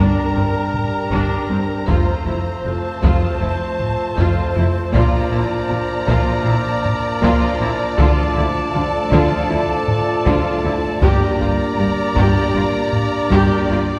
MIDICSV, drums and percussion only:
0, 0, Header, 1, 2, 480
1, 0, Start_track
1, 0, Tempo, 762389
1, 1188, Time_signature, 4, 2, 24, 8
1, 8808, End_track
2, 0, Start_track
2, 0, Title_t, "Taiko and cinematic ensemble drums"
2, 464, Note_on_c, 9, 45, 56
2, 527, Note_off_c, 9, 45, 0
2, 708, Note_on_c, 9, 41, 77
2, 771, Note_off_c, 9, 41, 0
2, 1188, Note_on_c, 9, 41, 95
2, 1251, Note_off_c, 9, 41, 0
2, 1909, Note_on_c, 9, 41, 93
2, 1972, Note_off_c, 9, 41, 0
2, 2392, Note_on_c, 9, 45, 55
2, 2455, Note_off_c, 9, 45, 0
2, 2631, Note_on_c, 9, 41, 77
2, 2693, Note_off_c, 9, 41, 0
2, 3112, Note_on_c, 9, 41, 93
2, 3175, Note_off_c, 9, 41, 0
2, 3828, Note_on_c, 9, 41, 96
2, 3891, Note_off_c, 9, 41, 0
2, 4313, Note_on_c, 9, 45, 58
2, 4376, Note_off_c, 9, 45, 0
2, 4551, Note_on_c, 9, 41, 86
2, 4614, Note_off_c, 9, 41, 0
2, 5025, Note_on_c, 9, 41, 104
2, 5088, Note_off_c, 9, 41, 0
2, 5739, Note_on_c, 9, 41, 98
2, 5802, Note_off_c, 9, 41, 0
2, 6221, Note_on_c, 9, 45, 58
2, 6284, Note_off_c, 9, 45, 0
2, 6460, Note_on_c, 9, 41, 85
2, 6523, Note_off_c, 9, 41, 0
2, 6938, Note_on_c, 9, 41, 109
2, 7001, Note_off_c, 9, 41, 0
2, 7657, Note_on_c, 9, 41, 93
2, 7720, Note_off_c, 9, 41, 0
2, 8140, Note_on_c, 9, 45, 59
2, 8203, Note_off_c, 9, 45, 0
2, 8383, Note_on_c, 9, 41, 83
2, 8446, Note_off_c, 9, 41, 0
2, 8808, End_track
0, 0, End_of_file